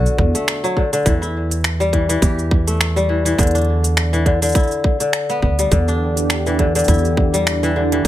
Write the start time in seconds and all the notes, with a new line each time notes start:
Already playing: D3 D4 F#4
0.06 shaker
0.18 E2, kick
0.35 A3, closed hi-hat, shaker
0.48 finger snap, closed hi-hat, shaker
0.64 F#3, shaker
0.77 D3, kick
0.93 D3, closed hi-hat, shaker
1.06 E2 E3, kick, closed hi-hat, shaker
1.22 E4, shaker
1.51 closed hi-hat, shaker
1.64 finger snap, closed hi-hat, shaker
1.80 G3, shaker
1.93 E3, kick, closed hi-hat
2.09 E3, closed hi-hat, shaker
2.22 E2 G4, kick, closed hi-hat, shaker
2.39 shaker
2.51 kick
2.67 A3, closed hi-hat, shaker
2.81 finger snap, closed hi-hat, shaker
2.96 G3, shaker
3.09 E3
3.25 E3, closed hi-hat, shaker
3.38 E2 D3, kick, closed hi-hat, shaker
3.43 closed hi-hat
3.47 closed hi-hat
3.51 D4, closed hi-hat
3.55 closed hi-hat, shaker
3.58 closed hi-hat
3.62 closed hi-hat
3.84 closed hi-hat, shaker
3.97 finger snap, closed hi-hat, shaker
4.13 E3, shaker
4.26 D3, kick, closed hi-hat
4.42 D3, closed hi-hat, shaker
4.46 shaker
4.49 shaker
4.52 E4, kick, closed hi-hat, shaker
4.55 shaker
4.63 shaker
4.67 shaker
4.71 shaker
4.84 kick
5.00 D3, closed hi-hat, shaker
5.13 finger snap, closed hi-hat, shaker
5.29 B3, shaker
5.42 D2 B3, kick
5.59 G3, closed hi-hat, shaker
5.72 E2 D3 E3 D4 G4, kick, closed hi-hat, shaker
5.88 D4, shaker
6.17 closed hi-hat, shaker
6.30 finger snap, closed hi-hat, shaker
6.46 E3, shaker
6.59 D3, kick, closed hi-hat
6.75 D3, closed hi-hat, shaker
6.79 shaker
6.84 E2, closed hi-hat, shaker
6.88 E4, kick, shaker
6.98 shaker
7.05 shaker
7.17 kick
7.34 G3, closed hi-hat, shaker
7.47 finger snap, closed hi-hat, shaker
7.63 E3, shaker
7.76 D3
7.92 E3, closed hi-hat
8.04 F#3 C5